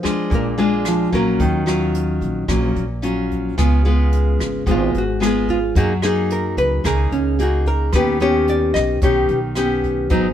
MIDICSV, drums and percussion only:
0, 0, Header, 1, 2, 480
1, 0, Start_track
1, 0, Key_signature, -6, "minor"
1, 0, Tempo, 543971
1, 1240, Time_signature, 4, 2, 24, 8
1, 9119, End_track
2, 0, Start_track
2, 0, Title_t, "Drums"
2, 38, Note_on_c, 9, 36, 23
2, 43, Note_on_c, 9, 37, 61
2, 43, Note_on_c, 9, 42, 25
2, 126, Note_off_c, 9, 36, 0
2, 131, Note_off_c, 9, 37, 0
2, 131, Note_off_c, 9, 42, 0
2, 275, Note_on_c, 9, 36, 63
2, 275, Note_on_c, 9, 42, 42
2, 363, Note_off_c, 9, 36, 0
2, 364, Note_off_c, 9, 42, 0
2, 519, Note_on_c, 9, 42, 29
2, 607, Note_off_c, 9, 42, 0
2, 751, Note_on_c, 9, 37, 61
2, 751, Note_on_c, 9, 42, 39
2, 839, Note_off_c, 9, 37, 0
2, 839, Note_off_c, 9, 42, 0
2, 992, Note_on_c, 9, 36, 22
2, 997, Note_on_c, 9, 42, 26
2, 1080, Note_off_c, 9, 36, 0
2, 1085, Note_off_c, 9, 42, 0
2, 1233, Note_on_c, 9, 36, 62
2, 1234, Note_on_c, 9, 42, 41
2, 1322, Note_off_c, 9, 36, 0
2, 1322, Note_off_c, 9, 42, 0
2, 1476, Note_on_c, 9, 37, 56
2, 1476, Note_on_c, 9, 42, 29
2, 1564, Note_off_c, 9, 37, 0
2, 1564, Note_off_c, 9, 42, 0
2, 1716, Note_on_c, 9, 42, 44
2, 1804, Note_off_c, 9, 42, 0
2, 1952, Note_on_c, 9, 36, 23
2, 1956, Note_on_c, 9, 42, 29
2, 2040, Note_off_c, 9, 36, 0
2, 2044, Note_off_c, 9, 42, 0
2, 2192, Note_on_c, 9, 36, 59
2, 2193, Note_on_c, 9, 37, 58
2, 2193, Note_on_c, 9, 42, 42
2, 2280, Note_off_c, 9, 36, 0
2, 2282, Note_off_c, 9, 37, 0
2, 2282, Note_off_c, 9, 42, 0
2, 2437, Note_on_c, 9, 42, 29
2, 2525, Note_off_c, 9, 42, 0
2, 2675, Note_on_c, 9, 42, 48
2, 2764, Note_off_c, 9, 42, 0
2, 2917, Note_on_c, 9, 36, 22
2, 2924, Note_on_c, 9, 42, 27
2, 3005, Note_off_c, 9, 36, 0
2, 3012, Note_off_c, 9, 42, 0
2, 3157, Note_on_c, 9, 36, 61
2, 3159, Note_on_c, 9, 37, 55
2, 3159, Note_on_c, 9, 42, 42
2, 3246, Note_off_c, 9, 36, 0
2, 3247, Note_off_c, 9, 37, 0
2, 3247, Note_off_c, 9, 42, 0
2, 3407, Note_on_c, 9, 42, 25
2, 3495, Note_off_c, 9, 42, 0
2, 3640, Note_on_c, 9, 42, 43
2, 3728, Note_off_c, 9, 42, 0
2, 3879, Note_on_c, 9, 36, 22
2, 3886, Note_on_c, 9, 37, 56
2, 3886, Note_on_c, 9, 42, 23
2, 3967, Note_off_c, 9, 36, 0
2, 3974, Note_off_c, 9, 37, 0
2, 3974, Note_off_c, 9, 42, 0
2, 4118, Note_on_c, 9, 36, 58
2, 4120, Note_on_c, 9, 42, 38
2, 4206, Note_off_c, 9, 36, 0
2, 4209, Note_off_c, 9, 42, 0
2, 4363, Note_on_c, 9, 42, 28
2, 4451, Note_off_c, 9, 42, 0
2, 4610, Note_on_c, 9, 37, 60
2, 4610, Note_on_c, 9, 42, 39
2, 4698, Note_off_c, 9, 37, 0
2, 4698, Note_off_c, 9, 42, 0
2, 4837, Note_on_c, 9, 36, 23
2, 4838, Note_on_c, 9, 42, 24
2, 4925, Note_off_c, 9, 36, 0
2, 4926, Note_off_c, 9, 42, 0
2, 5078, Note_on_c, 9, 36, 59
2, 5081, Note_on_c, 9, 42, 46
2, 5166, Note_off_c, 9, 36, 0
2, 5169, Note_off_c, 9, 42, 0
2, 5316, Note_on_c, 9, 37, 62
2, 5316, Note_on_c, 9, 42, 29
2, 5404, Note_off_c, 9, 37, 0
2, 5404, Note_off_c, 9, 42, 0
2, 5561, Note_on_c, 9, 42, 44
2, 5650, Note_off_c, 9, 42, 0
2, 5798, Note_on_c, 9, 36, 21
2, 5801, Note_on_c, 9, 42, 30
2, 5886, Note_off_c, 9, 36, 0
2, 5889, Note_off_c, 9, 42, 0
2, 6039, Note_on_c, 9, 36, 58
2, 6043, Note_on_c, 9, 37, 57
2, 6043, Note_on_c, 9, 42, 45
2, 6127, Note_off_c, 9, 36, 0
2, 6131, Note_off_c, 9, 37, 0
2, 6131, Note_off_c, 9, 42, 0
2, 6282, Note_on_c, 9, 42, 28
2, 6371, Note_off_c, 9, 42, 0
2, 6525, Note_on_c, 9, 42, 43
2, 6613, Note_off_c, 9, 42, 0
2, 6758, Note_on_c, 9, 36, 21
2, 6759, Note_on_c, 9, 42, 25
2, 6846, Note_off_c, 9, 36, 0
2, 6848, Note_off_c, 9, 42, 0
2, 6994, Note_on_c, 9, 37, 59
2, 6994, Note_on_c, 9, 42, 39
2, 6998, Note_on_c, 9, 36, 57
2, 7082, Note_off_c, 9, 37, 0
2, 7082, Note_off_c, 9, 42, 0
2, 7086, Note_off_c, 9, 36, 0
2, 7233, Note_on_c, 9, 42, 29
2, 7321, Note_off_c, 9, 42, 0
2, 7477, Note_on_c, 9, 42, 39
2, 7566, Note_off_c, 9, 42, 0
2, 7717, Note_on_c, 9, 36, 21
2, 7721, Note_on_c, 9, 37, 57
2, 7721, Note_on_c, 9, 42, 25
2, 7805, Note_off_c, 9, 36, 0
2, 7810, Note_off_c, 9, 37, 0
2, 7810, Note_off_c, 9, 42, 0
2, 7954, Note_on_c, 9, 42, 40
2, 7957, Note_on_c, 9, 36, 59
2, 8043, Note_off_c, 9, 42, 0
2, 8046, Note_off_c, 9, 36, 0
2, 8192, Note_on_c, 9, 42, 26
2, 8281, Note_off_c, 9, 42, 0
2, 8431, Note_on_c, 9, 37, 58
2, 8431, Note_on_c, 9, 42, 44
2, 8519, Note_off_c, 9, 37, 0
2, 8519, Note_off_c, 9, 42, 0
2, 8678, Note_on_c, 9, 36, 23
2, 8679, Note_on_c, 9, 42, 23
2, 8766, Note_off_c, 9, 36, 0
2, 8767, Note_off_c, 9, 42, 0
2, 8909, Note_on_c, 9, 42, 39
2, 8916, Note_on_c, 9, 36, 57
2, 8997, Note_off_c, 9, 42, 0
2, 9004, Note_off_c, 9, 36, 0
2, 9119, End_track
0, 0, End_of_file